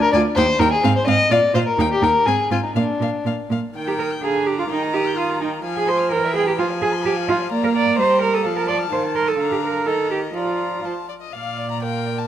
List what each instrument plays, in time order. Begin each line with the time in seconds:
0.01 violin A#4
0.12 cello D2, viola F4, violin D5 G#5
0.35 cello D#2, viola D#4, violin C5 G5
0.59 cello D#2, viola D#4, violin A#4 G5
0.72 violin G#4
0.84 cello G#2, viola C4, violin F5
0.96 violin C5
1.07 cello G#2, viola C4, violin D#5 F5
1.30 cello A#2, viola F4, violin D5 F5
1.54 cello A#2, viola F4, violin C5 F5
1.67 violin A#4
1.78 cello D#2, viola D#4, violin G5
1.91 violin G4
2.01 cello D#2, viola D#4, violin A#4 G5
2.26 cello G#2, viola C4, violin G#4 G#5
2.50 cello G#2, viola C4, violin F4 G#5
2.64 violin D#4
2.75 cello A#2, viola A#3, violin D4 F5
3.00 cello A#2, viola A#3, violin F5
3.25 cello A#2, viola A#3, violin F5
3.50 cello A#2, viola A#3, violin F5
3.76 viola D#3, violin G5
3.87 cello G4, violin A#5
3.99 cello A#4, violin D#6
4.12 violin G6
4.22 viola D3, cello G#4, violin F5 A#5
4.35 violin G#5
4.46 cello G4, violin A#5
4.59 cello F4, violin D6
4.70 viola D#3, cello D#4, violin G5
4.82 violin A#5
4.94 cello G4, violin D#6
5.07 violin G6
5.17 cello F4, violin D#6
5.30 violin A#5
5.41 cello D#4, violin G5
5.53 violin A#5
5.64 viola F3, violin F5 G#5
5.76 cello G#4, violin G#5
5.87 cello C5, violin C6
5.99 violin F6
6.12 viola E3, cello A#4, violin C5 G5
6.24 violin E5
6.35 cello G#4, violin G5
6.47 cello G4, violin A#5
6.59 viola F3, cello F4, violin C5 G#5
6.70 violin F5
6.82 cello G#4, violin G#5
6.94 violin C6
7.05 cello G4, violin G#5
7.16 violin F5
7.28 cello F4, violin C5
7.40 violin F5
7.52 viola A#3, violin D5 A#5
7.62 cello A#4, violin F5
7.75 cello D5, violin A#5
7.86 violin D6
7.99 viola G3, cello C5, violin D#5
8.09 violin G5
8.21 cello A#4, violin A#5
8.33 cello A4, violin D#6
8.44 viola F3, violin F5 A5
8.56 cello A#4, violin A5
8.68 cello D5, violin C6
8.79 violin F6
8.91 viola D#3, cello C5, violin F5
9.03 violin A5
9.15 cello A#4, violin C6
9.27 cello A4, violin D#6
9.38 viola D3, violin F5 A#5
9.52 cello G4
9.63 cello A#4
9.86 viola D#3, cello A4, violin D#5 A#5
10.11 cello G4
10.34 viola F3, cello F4, violin D5 A#5
10.84 viola F3, violin C5 A5
11.09 violin D5
11.21 violin D#5
11.33 cello A#2, viola D5, violin F5
11.57 violin D5
11.71 violin A#5
11.81 viola A#4, violin F5 G5
12.06 violin D5
12.18 violin A5